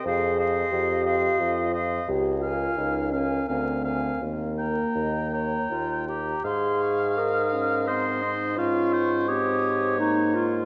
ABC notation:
X:1
M:3/4
L:1/8
Q:1/4=85
K:Ab
V:1 name="Flute"
f f2 f2 f | z a2 a a a | z b2 b2 b | c' d' e'2 c'2 |
d'2 e'2 d'2 |]
V:2 name="Oboe"
e e2 e2 e | z f2 f f f | z g2 g2 g | f4 e e |
f c d4 |]
V:3 name="Clarinet"
c c2 c2 c | z B2 B B B | z B e d F G | A2 B2 c2 |
F2 G2 E F |]
V:4 name="French horn"
A2 G2 F z | G F E D C2 | B,4 z2 | z2 E D C E |
D2 C2 B,2 |]
V:5 name="Bassoon" clef=bass
F,,2 F,,2 F,,2 | D,,2 D,,2 =D,,2 | E,,2 E,,2 E,,2 | A,,6 |
A,,6 |]